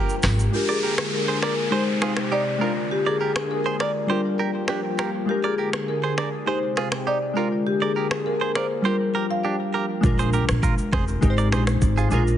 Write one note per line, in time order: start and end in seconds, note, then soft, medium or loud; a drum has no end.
0.00 0.52 F3 medium
0.00 0.49 G3 medium
0.00 0.50 A#3 medium
0.00 0.50 D4 medium
0.00 0.51 F4 medium
0.00 0.15 G4 medium
0.00 0.52 G4 medium
0.00 0.14 A#4 medium
0.00 0.20 A#4 medium
0.00 0.52 A#4 medium
0.09 shaker medium
0.22 0.46 G#1 medium
0.22 finger snap medium
0.22 cross-stick loud
0.22 clap loud
0.22 open hi-hat medium
0.22 high conga medium
0.22 low conga medium
0.22 shaker medium
0.39 shaker medium
0.50 1.71 D3 medium
0.50 1.68 G#3 medium
0.50 1.71 A#3 medium
0.50 1.69 D4 medium
0.50 1.70 F4 medium
0.50 0.69 G4 medium
0.50 1.71 G#4 medium
0.50 downlifter medium
0.55 1.71 A#4 medium
0.69 1.10 G#4 medium
0.69 0.79 A#4 medium
0.69 0.79 D5 medium
0.83 0.94 G4 medium
0.83 0.94 A#4 medium
0.98 finger snap medium
0.98 cross-stick loud
1.13 1.42 A#4 medium
1.28 1.39 G#4 medium
1.28 1.38 C5 medium
1.43 1.73 A#4 medium
1.43 1.54 A#4 medium
1.43 1.53 D5 medium
1.43 finger snap medium
1.43 cross-stick medium
1.71 2.60 C3 medium
1.71 2.57 G#3 medium
1.71 2.60 G#3 medium
1.71 2.61 D#4 medium
1.71 2.60 G4 medium
1.71 2.61 G4 medium
1.71 1.83 G#4 medium
1.71 1.83 C5 medium
1.71 2.28 C5 medium
1.71 2.62 C5 medium
2.02 2.13 F4 medium
2.02 2.12 G#4 medium
2.02 finger snap medium
2.02 cross-stick medium
2.17 finger snap medium
2.17 cross-stick medium
2.32 2.43 D#4 medium
2.32 2.42 G4 medium
2.32 2.74 D5 loud
2.58 4.08 D3 medium
2.58 4.05 G#3 medium
2.58 6.43 A#3 medium
2.58 4.06 D4 medium
2.58 4.07 F4 medium
2.58 2.72 F4 medium
2.58 4.08 G#4 medium
2.58 2.72 A#4 medium
2.63 4.08 A#4 medium
2.91 3.07 G4 loud
3.06 3.52 G#4 medium
3.06 3.17 A#4 soft
3.06 3.16 D5 medium
3.21 3.32 G4 medium
3.21 3.31 A#4 medium
3.36 finger snap medium
3.36 cross-stick loud
3.51 3.64 A#4 medium
3.66 3.76 G#4 medium
3.66 3.76 C5 medium
3.80 3.91 A#4 medium
3.80 3.91 D5 medium
3.80 4.95 D5 medium
3.80 finger snap medium
3.80 cross-stick medium
4.07 5.27 F3 medium
4.07 5.25 G3 medium
4.07 5.25 D4 medium
4.07 5.26 F4 medium
4.07 5.27 G4 medium
4.07 4.21 G4 medium
4.07 4.20 C5 medium
4.12 5.27 A#4 medium
4.39 4.51 G4 medium
4.39 4.50 A#4 medium
4.68 4.80 D4 medium
4.68 4.80 G4 medium
4.68 finger snap medium
4.68 cross-stick medium
4.99 5.10 G4 medium
4.99 5.09 A#4 medium
4.99 finger snap medium
4.99 cross-stick medium
5.26 6.46 D3 medium
5.26 6.43 G#3 medium
5.26 6.44 D4 medium
5.26 6.45 F4 medium
5.26 5.45 G4 medium
5.26 6.46 G#4 medium
5.31 6.46 A#4 medium
5.44 5.89 G#4 medium
5.44 5.54 A#4 medium
5.44 5.54 D5 medium
5.58 5.69 G4 medium
5.58 5.69 A#4 medium
5.73 finger snap medium
5.73 cross-stick loud
5.88 6.49 A#4 medium
6.04 6.14 G#4 medium
6.04 6.13 C5 medium
6.18 6.29 A#4 medium
6.18 6.28 D5 medium
6.18 finger snap medium
6.18 cross-stick medium
6.46 7.35 C3 medium
6.46 7.32 G#3 medium
6.46 7.35 G#3 medium
6.46 7.36 D#4 medium
6.46 7.35 G4 medium
6.46 7.36 G4 medium
6.46 6.59 G#4 medium
6.46 6.58 C5 medium
6.46 7.09 C5 medium
6.46 7.37 C5 medium
6.77 6.88 F4 medium
6.77 6.88 G#4 medium
6.77 finger snap medium
6.77 cross-stick medium
6.92 finger snap medium
6.92 cross-stick medium
7.07 7.18 D#4 medium
7.07 7.17 G4 medium
7.07 7.49 D5 loud
7.34 8.83 D3 medium
7.34 8.80 G#3 medium
7.34 10.01 A#3 medium
7.34 8.81 D4 medium
7.34 8.82 F4 medium
7.34 7.48 F4 medium
7.34 8.83 G#4 medium
7.34 7.47 A#4 medium
7.39 8.83 A#4 medium
7.67 7.73 G4 medium
7.82 8.27 G#4 medium
7.82 7.92 A#4 medium
7.82 7.92 D5 medium
7.96 8.07 G4 medium
7.96 8.07 A#4 medium
8.11 finger snap medium
8.11 cross-stick loud
8.26 8.56 A#4 medium
8.41 8.51 G#4 medium
8.41 8.51 C5 medium
8.55 8.67 A#4 medium
8.55 8.86 C5 medium
8.55 8.66 D5 medium
8.55 finger snap medium
8.55 cross-stick medium
8.82 10.02 F3 medium
8.82 10.00 G3 medium
8.82 10.01 D4 medium
8.82 10.02 F4 medium
8.82 10.02 G4 medium
8.82 8.96 G4 medium
8.82 9.32 A#4 medium
8.82 8.96 C5 medium
8.87 10.02 A#4 medium
9.15 9.26 G4 medium
9.15 9.25 A#4 medium
9.31 9.71 F5 loud
9.45 9.56 D4 medium
9.45 9.55 G4 medium
9.74 9.85 G4 medium
9.74 9.85 A#4 medium
10.01 10.39 A#1 loud
10.01 11.19 G#3 medium
10.01 11.19 D4 medium
10.01 11.20 F4 medium
10.01 kick loud
10.01 impact medium
10.01 shaker medium
10.06 11.21 A#4 medium
10.19 10.30 G#4 medium
10.19 10.29 C5 medium
10.19 shaker medium
10.33 10.45 G4 medium
10.33 10.44 A#4 medium
10.33 shaker soft
10.49 10.72 A#1 medium
10.49 finger snap medium
10.49 cross-stick loud
10.49 shaker medium
10.63 10.74 F4 medium
10.63 10.74 A#4 medium
10.63 kick loud
10.63 shaker medium
10.78 shaker soft
10.92 11.16 F1 medium
10.92 11.04 G#4 medium
10.92 11.04 C5 medium
10.92 finger snap medium
10.92 kick medium
10.92 cross-stick medium
11.08 shaker soft
11.21 11.52 G#1 loud
11.21 12.08 G#3 medium
11.21 12.11 D#4 medium
11.21 12.12 G4 medium
11.21 11.30 A#4 medium
11.21 kick loud
11.21 shaker medium
11.30 12.15 C5 medium
11.38 11.48 A#4 medium
11.38 11.48 D5 medium
11.38 shaker soft
11.52 11.75 A#1 medium
11.52 11.63 G#4 medium
11.52 11.63 C5 medium
11.52 finger snap medium
11.52 cross-stick loud
11.52 shaker medium
11.67 finger snap medium
11.67 cross-stick medium
11.67 shaker medium
11.81 12.05 G#1 medium
11.81 kick medium
11.81 shaker medium
11.98 12.08 F4 medium
11.98 12.07 G#4 medium
11.98 shaker medium
12.09 12.35 A#1 medium
12.09 12.38 G#3 medium
12.09 12.38 D4 medium
12.09 12.38 F4 medium
12.09 12.23 F4 medium
12.09 12.22 G#4 medium
12.09 shaker medium
12.14 12.38 A#4 medium
12.27 shaker medium